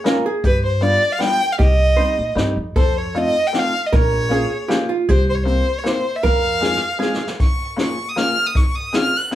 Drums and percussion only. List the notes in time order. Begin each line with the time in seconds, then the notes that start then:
0.06 snare, closed hi-hat
0.44 kick, closed hi-hat
0.82 closed hi-hat
1.21 snare, closed hi-hat
1.60 kick, closed hi-hat
1.99 closed hi-hat
2.38 snare, closed hi-hat
2.76 kick, closed hi-hat
3.15 closed hi-hat
3.54 snare, closed hi-hat
3.93 kick, closed hi-hat
4.33 closed hi-hat
4.70 snare, closed hi-hat
5.09 kick, closed hi-hat
5.48 closed hi-hat
5.86 snare, closed hi-hat
6.24 kick, closed hi-hat
6.63 snare
6.76 snare
7.02 snare
7.14 snare
7.27 snare
7.40 kick, closed hi-hat
7.79 snare, closed hi-hat
8.17 snare, closed hi-hat
8.55 kick, closed hi-hat
8.94 snare, closed hi-hat